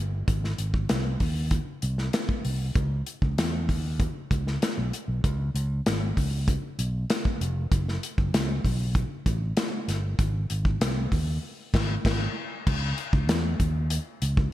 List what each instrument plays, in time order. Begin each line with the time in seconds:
Already playing: fingered electric bass G1
0.28 fingered electric bass G#1, kick, closed hi-hat
0.44 snare
0.58 fingered electric bass G#1, closed hi-hat
0.74 kick
0.89 fingered electric bass C2, snare, closed hi-hat
1.20 fingered electric bass D#2, kick, open hi-hat
1.51 kick, closed hi-hat
1.82 fingered electric bass C2, closed hi-hat
1.98 snare
2.13 snare, closed hi-hat
2.29 kick
2.45 fingered electric bass C2, open hi-hat
2.75 fingered electric bass C#2, kick, closed hi-hat
3.06 closed hi-hat
3.22 fingered electric bass C#2, kick
3.38 fingered electric bass E2, snare, closed hi-hat
3.69 fingered electric bass D#2, kick, open hi-hat
4.00 kick, closed hi-hat
4.31 fingered electric bass C#2, kick, closed hi-hat
4.47 snare
4.62 snare, closed hi-hat
4.78 fingered electric bass B1
4.93 closed hi-hat
5.08 fingered electric bass B1
5.24 fingered electric bass C#2, kick, closed hi-hat
5.54 fingered electric bass C#2, closed hi-hat
5.86 fingered electric bass G#1, snare, closed hi-hat
6.17 fingered electric bass C#2, kick, open hi-hat
6.48 kick, closed hi-hat
6.79 fingered electric bass B1, closed hi-hat
7.10 snare, closed hi-hat
7.25 kick
7.41 fingered electric bass F1, closed hi-hat
7.71 fingered electric bass F#1, kick, closed hi-hat
7.88 snare
8.03 closed hi-hat
8.18 fingered electric bass F#1, kick
8.33 fingered electric bass C#2, snare, closed hi-hat
8.64 fingered electric bass B1, kick, open hi-hat
8.95 kick, closed hi-hat
9.26 fingered electric bass A1, kick, closed hi-hat
9.57 snare, closed hi-hat
9.88 fingered electric bass G1, snare, closed hi-hat
10.19 fingered electric bass G#1, kick, closed hi-hat
10.50 fingered electric bass G#1, closed hi-hat
10.65 kick
10.81 fingered electric bass C2, snare, closed hi-hat
11.12 fingered electric bass D#2, kick, open hi-hat
11.74 fingered electric bass G#1, kick, snare, crash
12.05 fingered electric bass G#1, kick, snare, crash
12.67 fingered electric bass C#2, kick, crash
12.98 closed hi-hat
13.13 fingered electric bass C#2, kick
13.29 fingered electric bass E2, snare, closed hi-hat
13.60 fingered electric bass D#2, kick, closed hi-hat
13.90 closed hi-hat
14.22 fingered electric bass C#2, closed hi-hat
14.37 kick